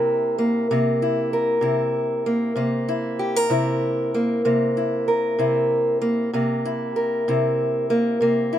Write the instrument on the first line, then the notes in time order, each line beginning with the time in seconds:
steel-string acoustic guitar
Already playing: C3 A#3 E4 A#4
0.38 A#3
0.71 C3 A#3
1.02 E4
1.33 A#4
1.61 C3 E4
2.26 A#3
2.56 C3 A#3
2.89 E4
3.19 G4
3.36 A#4
3.50 C3 E4
4.14 A#3
4.45 C3 A#3
4.77 E4
5.08 A#4
5.39 C3 E4
6.01 A#3
6.33 C3 A#3
6.65 E4
6.96 A#4
7.28 C3 E4
7.90 A#3
8.21 C3 A#3
8.53 E4